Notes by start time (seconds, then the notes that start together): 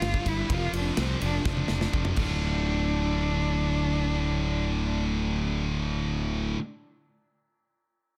Already playing: F4
0.01 G1 G2 D3 G3, snare, ride
0.14 kick
0.24 G1 G2 D3 G3, kick, ride
0.29 E4
0.49 F1 F2 C3 F3, kick, ride
0.53 F4
0.73 F1 D4, ride
0.97 C2 F2 C3 F3 C4, snare, ride
1.21 F1 F2 C3 F3 D4, ride
1.44 F1 F2 C3 F3 D4, kick, snare
1.57 high tom
1.68 F1, snare
1.81 snare
1.92 F1 F2 C3 F3, kick
2.05 mid tom
2.15 D1 D2 A2 D3 A3 D4, kick, crash
2.20 F4